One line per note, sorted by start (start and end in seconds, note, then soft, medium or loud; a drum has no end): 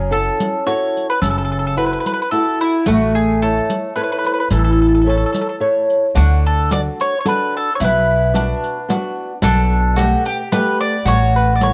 0.00 0.28 F#1 medium
0.00 2.85 C#4 loud
0.11 0.55 E4 soft
0.11 0.55 F#4 soft
0.11 0.56 A4 soft
0.11 0.64 A4 medium
0.40 riq soft
0.66 1.11 E4 medium
0.66 1.11 F#4 soft
0.66 1.11 A4 medium
0.66 1.06 C#5 medium
0.66 riq soft
0.97 riq soft
1.10 1.21 B4 medium
1.22 1.93 F#1 medium
1.22 1.75 C#3 medium
1.22 1.29 A4 medium
1.22 riq soft
1.30 1.37 A4 medium
1.38 1.43 A4 medium
1.45 1.50 A4 medium
1.52 1.58 A4 medium
1.59 1.65 A4 soft
1.67 1.74 A4 medium
1.77 2.21 E4 soft
1.77 2.21 F#4 soft
1.77 2.21 A4 soft
1.77 1.85 B4 medium
1.86 1.92 B4 medium
1.93 1.99 B4 medium
2.00 2.06 B4 medium
2.06 2.12 B4 medium
2.06 riq soft
2.14 2.21 B4 medium
2.22 2.29 B4 medium
2.31 2.76 E4 soft
2.31 2.76 F#4 soft
2.31 2.58 A4 medium
2.31 2.76 A4 soft
2.31 riq soft
2.61 2.85 E4 medium
2.86 3.58 A1 medium
2.86 5.85 A3 medium
2.86 3.40 A3 medium
2.86 3.14 F#4 medium
2.86 riq medium
3.15 3.42 G#4 medium
3.42 3.86 E4 soft
3.42 3.93 A4 medium
3.42 3.86 A4 soft
3.42 3.86 C#5 soft
3.70 riq soft
3.96 4.40 E4 soft
3.96 4.40 A4 soft
3.96 4.02 B4 medium
3.96 4.40 C#5 medium
3.96 riq soft
4.03 4.11 B4 medium
4.12 4.17 B4 medium
4.18 4.25 B4 medium
4.24 4.32 B4 medium
4.24 riq soft
4.34 4.39 B4 medium
4.40 4.48 B4 medium
4.50 5.22 A1 loud
4.50 5.04 E3 medium
4.50 4.58 A4 medium
4.50 riq soft
4.59 4.63 A4 soft
4.64 4.71 A4 medium
4.72 4.80 A4 soft
4.82 4.87 A4 soft
4.88 4.93 A4 soft
4.95 5.00 A4 soft
5.02 5.08 A4 soft
5.06 5.50 E4 soft
5.06 5.50 A4 soft
5.06 5.16 A4 medium
5.06 5.51 C#5 soft
5.17 5.25 A4 soft
5.26 5.31 A4 soft
5.32 5.40 A4 soft
5.32 riq medium
5.41 5.48 A4 medium
5.49 5.55 A4 soft
5.60 6.05 E4 medium
5.60 6.05 A4 soft
5.60 6.05 C#5 medium
5.90 riq soft
6.15 6.88 D2 loud
6.15 6.69 D3 medium
6.15 7.85 D4 medium
6.15 6.43 F#4 medium
6.15 riq soft
6.46 6.70 A4 medium
6.70 7.15 D4 soft
6.70 7.15 F#4 soft
6.70 7.15 A4 soft
6.70 6.80 D5 loud
6.70 riq medium
7.00 7.19 C#5 loud
7.00 riq soft
7.20 7.26 C#5 soft
7.25 7.69 D4 medium
7.25 7.69 F#4 soft
7.25 7.69 A4 medium
7.25 7.56 B4 medium
7.25 riq medium
7.57 7.74 A4 medium
7.75 7.81 C#5 medium
7.80 8.51 B1 loud
7.80 8.33 B2 medium
7.80 8.31 E4 medium
7.80 riq medium
7.84 9.15 B4 medium
8.34 8.77 B3 soft
8.34 8.77 D4 soft
8.34 9.42 D4 medium
8.34 8.78 F#4 soft
8.34 riq medium
8.64 riq soft
8.88 9.32 B3 medium
8.88 9.32 D4 soft
8.88 9.32 F#4 medium
8.88 riq medium
9.42 10.13 B1 loud
9.42 9.95 B2 medium
9.42 9.99 D4 loud
9.42 10.22 A4 loud
9.42 riq medium
9.96 10.41 A3 soft
9.96 10.41 B3 soft
9.96 10.23 F#4 medium
9.96 10.41 G4 medium
9.96 riq medium
10.25 11.05 G4 loud
10.25 riq soft
10.52 10.96 A3 medium
10.52 10.95 B3 soft
10.52 10.96 G4 medium
10.52 10.80 B4 loud
10.52 riq medium
10.81 11.04 D5 loud
11.05 11.73 A1 loud
11.05 11.59 A3 medium
11.05 11.73 F#4 loud
11.05 11.36 C#5 medium
11.05 riq medium
11.36 11.53 B4 medium
11.56 11.61 D5 medium
11.61 11.73 E4 soft
11.61 11.73 A4 soft
11.61 11.73 C#5 soft
11.61 11.73 C#5 medium
11.61 riq medium